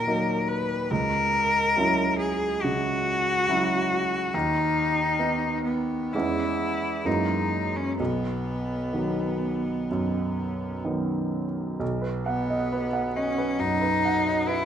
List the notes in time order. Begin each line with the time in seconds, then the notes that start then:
Already playing: A#2 F#3 A#3 D#4 A#4
0.07 F#3 A#3 D#4
0.48 B4
0.91 C#2 A#4
1.76 F#3 C#4 E4
2.19 G#4
2.62 C#3 F#4
3.49 F#3 C#4 E4
4.34 D#2 D#4
5.19 B3 D#4
5.64 B3
6.13 E2 E3 G#3 C#4 E4
7.05 F#2 E3 G#3 A#3 D#4
7.77 C#4
7.99 B1 B3
8.93 D#3 F#3 B3
9.91 F#2
10.85 D#3 F#3 B3
11.80 B1
12.02 B4
12.26 B3 F#5
12.50 D#5
12.73 B4
12.93 F#5
13.17 C#4 D#5
13.38 B4
13.59 F#2 D#4
13.81 B4
14.05 F#5
14.27 D#5
14.47 E4 B4